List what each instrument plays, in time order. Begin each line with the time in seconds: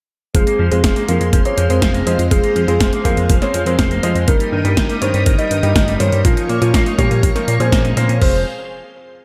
0.34 analog synth bass F1, clean electric guitar F3, grand piano G#3 C4 F4 C5, soft synth lead G#4, string machine G#4 C5 F5 C6, kick, closed hi-hat
0.47 clean electric guitar A#3, closed hi-hat
0.59 analog synth bass F2, clean electric guitar F3
0.71 analog synth bass F2, clean electric guitar G#3, grand piano G#3 C4 F4 C5, soft synth lead G#4, closed hi-hat
0.84 analog synth bass F1, clean electric guitar F3, kick, snare, closed hi-hat
0.96 clean electric guitar A#3, closed hi-hat
1.08 analog synth bass F2, clean electric guitar F3, grand piano G#3 C4 F4 F5, soft synth lead A#4, closed hi-hat
1.21 analog synth bass F2, clean electric guitar G#3, closed hi-hat
1.33 analog synth bass F1, clean electric guitar F3, kick, closed hi-hat
1.45 grand piano G#3 C4 F4 C5, clean electric guitar A#3, soft synth lead C#5, closed hi-hat
1.58 analog synth bass F2, clean electric guitar F3, closed hi-hat
1.70 analog synth bass F2, grand piano G#3 C4 F4 A#4, clean electric guitar G#3, soft synth lead C5, closed hi-hat
1.82 analog synth bass F1, clean electric guitar F3, kick, snare, closed hi-hat
1.94 clean electric guitar A#3, closed hi-hat
2.06 analog synth bass F2, clean electric guitar F3, grand piano G#3 C4 F4 D#5, soft synth lead C5, closed hi-hat
2.19 analog synth bass F2, clean electric guitar G#3, closed hi-hat
2.31 analog synth bass F1, clean electric guitar F3, grand piano G#3 C4 F4 C5, soft synth lead G#4, kick, closed hi-hat
2.44 clean electric guitar A#3, closed hi-hat
2.56 analog synth bass F2, clean electric guitar F3, closed hi-hat
2.68 analog synth bass F2, grand piano G#3 C4 F4 C5, clean electric guitar G#3, soft synth lead G#4, closed hi-hat
2.81 analog synth bass F1, clean electric guitar F3, kick, snare, closed hi-hat
2.93 clean electric guitar A#3, closed hi-hat
3.05 analog synth bass F2, clean electric guitar F3, grand piano G#3 C4 F4 F5, soft synth lead A#4, kick, closed hi-hat
3.17 analog synth bass F2, clean electric guitar G#3, closed hi-hat
3.29 analog synth bass F1, clean electric guitar F3, kick, closed hi-hat
3.42 grand piano G#3 C4 F4 C5, clean electric guitar A#3, soft synth lead C#5, snare, closed hi-hat
3.54 analog synth bass F2, clean electric guitar F3, closed hi-hat
3.66 analog synth bass F2, grand piano G#3 C4 F4 A#4, clean electric guitar G#3, soft synth lead C5, closed hi-hat
3.79 analog synth bass F1, clean electric guitar F3, kick, snare, closed hi-hat
3.91 clean electric guitar A#3, closed hi-hat
4.03 analog synth bass F2, clean electric guitar F3, grand piano G#3 C4 F4 D#5, soft synth lead C5, closed hi-hat
4.15 analog synth bass F2, clean electric guitar G#3, closed hi-hat
4.28 analog synth bass G1, clean electric guitar D#3, grand piano G3 A#3 D#4 A#4, string machine A#4 D#5 G5 D#6, soft synth lead A#4, kick, closed hi-hat
4.40 clean electric guitar G3, closed hi-hat
4.52 analog synth bass G2, clean electric guitar D#3
4.64 analog synth bass G2, clean electric guitar G3, grand piano G3 A#3 D#4 A#4, soft synth lead A#4, closed hi-hat
4.77 analog synth bass G1, clean electric guitar D#3, kick, snare, closed hi-hat
4.90 clean electric guitar G3, closed hi-hat
5.02 analog synth bass G2, clean electric guitar D#3, grand piano G3 A#3 D#4 C#5, soft synth lead C5, closed hi-hat
5.14 analog synth bass G2, clean electric guitar G3, closed hi-hat
5.26 analog synth bass G1, clean electric guitar D#3, kick, closed hi-hat
5.38 grand piano G3 A#3 D#4 A#4, clean electric guitar G3, soft synth lead D#5, closed hi-hat
5.51 analog synth bass G2, clean electric guitar D#3, closed hi-hat
5.63 analog synth bass G2, grand piano G3 A#3 D#4 G4, clean electric guitar G3, soft synth lead D#5, closed hi-hat
5.76 analog synth bass G1, clean electric guitar D#3, kick, snare, closed hi-hat
5.88 clean electric guitar G3, closed hi-hat
6.00 analog synth bass G2, clean electric guitar D#3, grand piano G3 A#3 D#4 C5, soft synth lead C#5, closed hi-hat
6.12 analog synth bass G2, clean electric guitar G3, closed hi-hat
6.25 analog synth bass A#1, grand piano F3 A#3 C#4 A#4, clean electric guitar A#3, soft synth lead F4, string machine C#5 F5 C#6, kick, closed hi-hat
6.37 clean electric guitar D#4, closed hi-hat
6.49 analog synth bass A#2, clean electric guitar A#3, closed hi-hat
6.62 analog synth bass A#2, grand piano F3 A#3 C#4 A#4, clean electric guitar C#4, soft synth lead F4, closed hi-hat
6.74 analog synth bass A#1, clean electric guitar A#3, kick, snare, closed hi-hat
6.86 clean electric guitar D#4, closed hi-hat
6.98 analog synth bass A#2, grand piano F3 A#3 C#4 C#5, clean electric guitar A#3, soft synth lead G4, kick, closed hi-hat
7.11 analog synth bass A#2, clean electric guitar C#4, closed hi-hat
7.23 analog synth bass A#1, clean electric guitar A#3, kick, closed hi-hat
7.35 grand piano F3 A#3 C#4 A#4, clean electric guitar D#4, soft synth lead A#4, snare, closed hi-hat
7.48 analog synth bass A#2, clean electric guitar A#3, closed hi-hat
7.60 analog synth bass A#2, grand piano F3 A#3 C#4 G#4, clean electric guitar C#4, soft synth lead C5, closed hi-hat
7.72 analog synth bass A#1, clean electric guitar A#3, kick, snare, closed hi-hat
7.85 clean electric guitar D#4, closed hi-hat
7.97 analog synth bass A#2, grand piano F3 A#3 C#4 C5, clean electric guitar A#3, soft synth lead C5, closed hi-hat
8.09 analog synth bass A#2, clean electric guitar C#4, closed hi-hat
8.21 analog synth bass F1, clean electric guitar F3, grand piano G#3 C4 F4 C5, string machine G#4 C5 F5 C6, soft synth lead C5, kick, crash